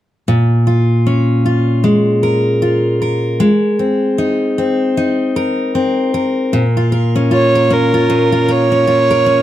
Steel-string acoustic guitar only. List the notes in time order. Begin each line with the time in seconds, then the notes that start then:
0.28 A#2
0.67 F4
1.07 C#4
1.46 F4
1.84 G#3
2.23 A#4
2.62 F4
3.02 A#4
3.40 G#3
3.79 C4
4.18 D#4
4.58 C4
4.97 D#4
5.36 A#4
5.75 C4
6.14 A#4
6.53 A#2
6.77 F4
6.92 A#4
7.16 C#4
7.31 F4
7.55 A#4
7.71 C#4
7.94 F4
8.10 A#2
8.32 F4
8.48 A#4
8.72 C#4
8.87 F4
9.11 A#4
9.26 C#4